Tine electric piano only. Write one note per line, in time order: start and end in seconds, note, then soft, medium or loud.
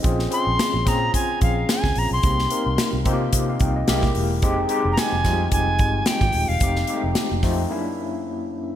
0.00 0.26 C4 medium
0.00 0.26 C#4 medium
0.00 0.26 F4 medium
0.00 0.26 G#4 medium
0.00 0.18 D#5 medium
0.30 0.76 C4 medium
0.30 0.76 C#4 medium
0.30 0.76 F4 medium
0.30 0.76 G#4 medium
0.85 1.73 C4 medium
0.85 1.74 C#4 medium
0.85 1.74 F4 medium
0.85 1.74 G#4 medium
2.23 2.46 A#3 medium
2.23 2.46 C4 medium
2.23 2.46 D#4 medium
2.23 2.46 G4 medium
2.50 2.95 A#3 medium
2.50 2.95 C4 medium
2.50 2.96 D#4 medium
2.50 2.96 A#4 medium
3.05 3.87 A#3 loud
3.05 3.88 C4 medium
3.05 3.88 D#4 medium
3.05 3.13 F4 medium
3.13 3.88 G4 loud
3.34 3.48 D#5 medium
3.49 3.61 F5 medium
3.62 3.75 G5 medium
3.76 4.02 D#5 medium
3.88 4.33 G#3 medium
3.88 4.33 A#3 medium
3.88 3.95 C#4 medium
3.88 4.33 G4 loud
3.96 4.36 E4 medium
4.43 4.65 G#3 medium
4.43 4.65 C4 medium
4.43 4.65 D#4 medium
4.43 4.65 G4 medium
4.69 5.14 G#3 medium
4.69 5.14 C4 medium
4.69 5.14 D#4 medium
4.69 5.15 G4 medium
5.24 5.32 G3 medium
5.24 6.12 C4 medium
5.24 6.12 D#4 medium
5.24 6.13 F4 medium
5.31 6.15 G#3 medium
6.62 6.84 A3 medium
6.62 6.84 C4 medium
6.62 6.84 D#4 medium
6.62 6.84 G4 medium
6.88 6.96 G#3 medium
6.88 7.33 C4 medium
6.88 7.33 D#4 medium
6.88 7.34 G4 medium
6.95 7.36 A3 medium
7.43 7.71 A3 medium
7.43 7.71 C4 medium
7.43 7.71 D#4 medium
7.43 7.71 F4 medium
7.70 8.58 F#2 medium
7.70 8.58 A#3 medium
7.70 8.59 C#4 medium
7.70 8.59 D4 medium
7.70 8.59 E4 loud